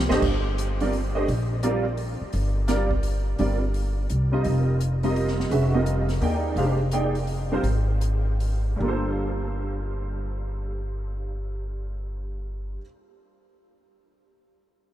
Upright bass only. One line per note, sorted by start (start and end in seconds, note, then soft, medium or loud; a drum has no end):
0.10 0.21 G#1 medium
0.22 1.24 G1 medium
1.28 2.17 A#1 medium
2.21 muted upright bass stroke soft
2.34 3.35 G1 medium
3.39 4.06 G1 medium
4.10 4.43 C2 medium
4.45 5.47 F1 medium
5.51 6.17 F1 medium
6.21 6.54 D#2 medium
6.56 7.60 F1 medium
7.63 8.77 G#1 medium
8.80 12.76 G1 medium